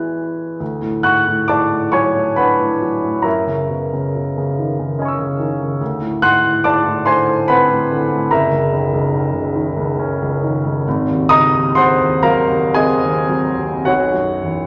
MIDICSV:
0, 0, Header, 1, 2, 480
1, 0, Start_track
1, 0, Tempo, 1008403
1, 287, Time_signature, 6, 3, 24, 8
1, 287, Tempo, 886263
1, 2207, Tempo, 829876
1, 5087, Tempo, 862069
1, 6047, Tempo, 902256
1, 6527, Tempo, 1003344
1, 7007, Tempo, 1109057
1, 7834, End_track
2, 0, Start_track
2, 0, Title_t, "Grand piano"
2, 0, Program_c, 0, 0
2, 0, Control_c, 0, 64, 127
2, 0, Note_on_c, 0, 52, 19
2, 0, Note_on_c, 0, 56, 20
2, 0, Note_on_c, 0, 59, 20
2, 0, Note_on_c, 0, 66, 21
2, 0, Note_on_c, 0, 76, 18
2, 0, Note_on_c, 0, 80, 18
2, 0, Note_on_c, 0, 83, 16
2, 0, Note_on_c, 0, 90, 18
2, 267, Note_off_c, 0, 52, 0
2, 269, Note_off_c, 0, 56, 0
2, 269, Note_off_c, 0, 59, 0
2, 269, Note_off_c, 0, 76, 0
2, 270, Note_off_c, 0, 66, 0
2, 273, Note_off_c, 0, 80, 0
2, 282, Note_off_c, 0, 83, 0
2, 285, Note_on_c, 0, 38, 34
2, 290, Note_off_c, 0, 90, 0
2, 297, Control_c, 0, 64, 0
2, 390, Control_c, 0, 64, 127
2, 404, Note_on_c, 0, 45, 28
2, 520, Note_on_c, 0, 90, 64
2, 522, Note_on_c, 0, 44, 26
2, 523, Note_on_c, 0, 78, 53
2, 528, Note_on_c, 0, 85, 47
2, 600, Note_off_c, 0, 45, 0
2, 646, Note_off_c, 0, 44, 0
2, 649, Note_on_c, 0, 45, 28
2, 749, Note_off_c, 0, 78, 0
2, 752, Note_off_c, 0, 85, 0
2, 761, Note_on_c, 0, 86, 63
2, 765, Note_off_c, 0, 90, 0
2, 766, Note_on_c, 0, 44, 26
2, 769, Note_on_c, 0, 81, 50
2, 770, Note_on_c, 0, 74, 44
2, 841, Note_off_c, 0, 45, 0
2, 887, Note_off_c, 0, 44, 0
2, 890, Note_on_c, 0, 45, 30
2, 991, Note_off_c, 0, 81, 0
2, 992, Note_off_c, 0, 74, 0
2, 999, Note_on_c, 0, 85, 61
2, 1002, Note_on_c, 0, 54, 33
2, 1004, Note_off_c, 0, 86, 0
2, 1006, Note_on_c, 0, 80, 49
2, 1007, Note_on_c, 0, 73, 49
2, 1081, Note_off_c, 0, 45, 0
2, 1127, Note_on_c, 0, 45, 30
2, 1197, Note_off_c, 0, 54, 0
2, 1230, Note_off_c, 0, 73, 0
2, 1230, Note_off_c, 0, 80, 0
2, 1240, Note_on_c, 0, 83, 59
2, 1243, Note_off_c, 0, 85, 0
2, 1243, Note_on_c, 0, 62, 32
2, 1246, Note_on_c, 0, 71, 43
2, 1247, Note_on_c, 0, 78, 46
2, 1320, Note_off_c, 0, 45, 0
2, 1367, Note_on_c, 0, 45, 30
2, 1436, Note_off_c, 0, 62, 0
2, 1482, Note_on_c, 0, 54, 26
2, 1556, Note_off_c, 0, 45, 0
2, 1597, Note_on_c, 0, 45, 26
2, 1673, Note_off_c, 0, 54, 0
2, 1699, Note_off_c, 0, 38, 0
2, 1700, Note_off_c, 0, 71, 0
2, 1700, Note_off_c, 0, 78, 0
2, 1706, Note_on_c, 0, 82, 52
2, 1711, Note_on_c, 0, 42, 37
2, 1715, Note_on_c, 0, 76, 41
2, 1717, Note_on_c, 0, 70, 43
2, 1718, Note_off_c, 0, 83, 0
2, 1719, Note_off_c, 0, 45, 0
2, 1732, Control_c, 0, 64, 0
2, 1834, Control_c, 0, 64, 127
2, 1840, Note_on_c, 0, 49, 24
2, 1958, Note_on_c, 0, 47, 26
2, 2037, Note_off_c, 0, 49, 0
2, 2083, Note_off_c, 0, 47, 0
2, 2090, Note_on_c, 0, 49, 33
2, 2206, Note_on_c, 0, 47, 26
2, 2284, Note_off_c, 0, 49, 0
2, 2332, Note_off_c, 0, 47, 0
2, 2340, Note_on_c, 0, 49, 33
2, 2460, Note_on_c, 0, 51, 33
2, 2530, Note_off_c, 0, 49, 0
2, 2580, Note_on_c, 0, 49, 30
2, 2649, Note_off_c, 0, 51, 0
2, 2692, Note_on_c, 0, 61, 31
2, 2694, Note_on_c, 0, 75, 28
2, 2710, Note_on_c, 0, 80, 26
2, 2730, Note_on_c, 0, 85, 27
2, 2747, Note_on_c, 0, 88, 24
2, 2768, Note_off_c, 0, 49, 0
2, 2811, Note_on_c, 0, 49, 30
2, 2883, Note_off_c, 0, 61, 0
2, 2904, Note_off_c, 0, 76, 0
2, 2905, Note_off_c, 0, 70, 0
2, 2922, Note_off_c, 0, 82, 0
2, 2928, Note_on_c, 0, 51, 29
2, 3001, Note_off_c, 0, 49, 0
2, 3061, Note_on_c, 0, 49, 23
2, 3118, Note_off_c, 0, 51, 0
2, 3137, Note_off_c, 0, 42, 0
2, 3143, Note_off_c, 0, 75, 0
2, 3152, Note_off_c, 0, 80, 0
2, 3161, Note_off_c, 0, 85, 0
2, 3167, Note_on_c, 0, 38, 41
2, 3170, Note_off_c, 0, 88, 0
2, 3172, Note_off_c, 0, 49, 0
2, 3175, Control_c, 0, 64, 0
2, 3267, Control_c, 0, 64, 127
2, 3287, Note_on_c, 0, 45, 30
2, 3407, Note_on_c, 0, 90, 78
2, 3410, Note_on_c, 0, 44, 29
2, 3411, Note_on_c, 0, 84, 56
2, 3413, Note_on_c, 0, 78, 55
2, 3475, Note_off_c, 0, 45, 0
2, 3526, Note_off_c, 0, 44, 0
2, 3532, Note_on_c, 0, 45, 34
2, 3632, Note_off_c, 0, 84, 0
2, 3634, Note_off_c, 0, 78, 0
2, 3647, Note_off_c, 0, 90, 0
2, 3649, Note_on_c, 0, 86, 69
2, 3653, Note_on_c, 0, 44, 32
2, 3655, Note_on_c, 0, 74, 50
2, 3657, Note_on_c, 0, 81, 59
2, 3724, Note_off_c, 0, 45, 0
2, 3768, Note_on_c, 0, 45, 30
2, 3773, Note_off_c, 0, 44, 0
2, 3881, Note_off_c, 0, 74, 0
2, 3881, Note_off_c, 0, 81, 0
2, 3888, Note_on_c, 0, 84, 68
2, 3895, Note_off_c, 0, 86, 0
2, 3895, Note_on_c, 0, 50, 39
2, 3895, Note_on_c, 0, 80, 59
2, 3896, Note_on_c, 0, 72, 56
2, 3966, Note_off_c, 0, 45, 0
2, 4015, Note_on_c, 0, 45, 35
2, 4089, Note_off_c, 0, 50, 0
2, 4121, Note_off_c, 0, 72, 0
2, 4121, Note_off_c, 0, 80, 0
2, 4134, Note_off_c, 0, 84, 0
2, 4134, Note_on_c, 0, 83, 75
2, 4139, Note_on_c, 0, 60, 35
2, 4143, Note_on_c, 0, 78, 56
2, 4144, Note_on_c, 0, 71, 55
2, 4208, Note_off_c, 0, 45, 0
2, 4253, Note_on_c, 0, 45, 36
2, 4329, Note_off_c, 0, 60, 0
2, 4383, Note_on_c, 0, 50, 39
2, 4443, Note_off_c, 0, 45, 0
2, 4499, Note_on_c, 0, 45, 28
2, 4566, Note_off_c, 0, 50, 0
2, 4586, Note_off_c, 0, 38, 0
2, 4589, Note_off_c, 0, 71, 0
2, 4589, Note_off_c, 0, 78, 0
2, 4607, Note_off_c, 0, 83, 0
2, 4612, Note_off_c, 0, 45, 0
2, 4614, Note_on_c, 0, 82, 62
2, 4618, Control_c, 0, 64, 0
2, 4620, Note_on_c, 0, 30, 49
2, 4620, Note_on_c, 0, 70, 47
2, 4620, Note_on_c, 0, 76, 54
2, 4710, Control_c, 0, 64, 127
2, 4730, Note_on_c, 0, 37, 30
2, 4853, Note_on_c, 0, 35, 36
2, 4919, Note_off_c, 0, 37, 0
2, 4970, Note_off_c, 0, 35, 0
2, 4977, Note_on_c, 0, 37, 40
2, 5091, Note_on_c, 0, 35, 33
2, 5166, Note_off_c, 0, 37, 0
2, 5203, Note_on_c, 0, 37, 38
2, 5209, Note_off_c, 0, 35, 0
2, 5324, Note_on_c, 0, 51, 38
2, 5396, Note_off_c, 0, 37, 0
2, 5443, Note_on_c, 0, 37, 38
2, 5516, Note_off_c, 0, 51, 0
2, 5569, Note_on_c, 0, 61, 39
2, 5635, Note_off_c, 0, 37, 0
2, 5697, Note_on_c, 0, 37, 38
2, 5759, Note_off_c, 0, 61, 0
2, 5788, Note_off_c, 0, 70, 0
2, 5788, Note_off_c, 0, 76, 0
2, 5808, Note_off_c, 0, 82, 0
2, 5816, Note_on_c, 0, 51, 36
2, 5884, Note_off_c, 0, 37, 0
2, 5934, Note_on_c, 0, 37, 34
2, 6006, Note_off_c, 0, 51, 0
2, 6032, Note_off_c, 0, 30, 0
2, 6052, Note_off_c, 0, 37, 0
2, 6057, Control_c, 0, 64, 0
2, 6062, Note_on_c, 0, 32, 49
2, 6148, Control_c, 0, 64, 127
2, 6175, Note_on_c, 0, 39, 36
2, 6281, Note_on_c, 0, 87, 97
2, 6287, Note_on_c, 0, 82, 68
2, 6289, Note_on_c, 0, 37, 38
2, 6289, Note_on_c, 0, 75, 66
2, 6361, Note_off_c, 0, 39, 0
2, 6407, Note_off_c, 0, 37, 0
2, 6412, Note_on_c, 0, 39, 38
2, 6513, Note_off_c, 0, 82, 0
2, 6514, Note_off_c, 0, 75, 0
2, 6526, Note_on_c, 0, 84, 80
2, 6527, Note_off_c, 0, 87, 0
2, 6532, Note_on_c, 0, 37, 35
2, 6534, Note_on_c, 0, 78, 61
2, 6537, Note_on_c, 0, 72, 66
2, 6600, Note_off_c, 0, 39, 0
2, 6639, Note_on_c, 0, 39, 43
2, 6645, Note_off_c, 0, 37, 0
2, 6749, Note_off_c, 0, 78, 0
2, 6750, Note_off_c, 0, 72, 0
2, 6753, Note_on_c, 0, 82, 76
2, 6756, Note_on_c, 0, 54, 43
2, 6756, Note_on_c, 0, 77, 60
2, 6757, Note_on_c, 0, 70, 67
2, 6761, Note_off_c, 0, 84, 0
2, 6833, Note_off_c, 0, 39, 0
2, 6882, Note_on_c, 0, 39, 40
2, 6955, Note_off_c, 0, 54, 0
2, 6988, Note_off_c, 0, 70, 0
2, 6988, Note_off_c, 0, 77, 0
2, 7001, Note_on_c, 0, 80, 78
2, 7003, Note_on_c, 0, 60, 37
2, 7004, Note_off_c, 0, 82, 0
2, 7005, Note_on_c, 0, 68, 53
2, 7008, Note_on_c, 0, 75, 62
2, 7077, Note_off_c, 0, 39, 0
2, 7126, Note_on_c, 0, 39, 39
2, 7192, Note_off_c, 0, 60, 0
2, 7239, Note_on_c, 0, 54, 30
2, 7315, Note_off_c, 0, 39, 0
2, 7358, Note_on_c, 0, 39, 29
2, 7434, Note_off_c, 0, 54, 0
2, 7466, Note_off_c, 0, 68, 0
2, 7468, Note_off_c, 0, 75, 0
2, 7474, Note_off_c, 0, 32, 0
2, 7481, Note_on_c, 0, 78, 69
2, 7482, Note_off_c, 0, 80, 0
2, 7483, Note_off_c, 0, 39, 0
2, 7484, Note_on_c, 0, 66, 48
2, 7485, Note_on_c, 0, 73, 45
2, 7487, Note_on_c, 0, 35, 43
2, 7493, Control_c, 0, 64, 0
2, 7595, Control_c, 0, 64, 127
2, 7606, Note_on_c, 0, 42, 32
2, 7731, Note_on_c, 0, 40, 28
2, 7799, Note_off_c, 0, 42, 0
2, 7834, Note_off_c, 0, 35, 0
2, 7834, Note_off_c, 0, 40, 0
2, 7834, Note_off_c, 0, 66, 0
2, 7834, Note_off_c, 0, 73, 0
2, 7834, Note_off_c, 0, 78, 0
2, 7834, End_track
0, 0, End_of_file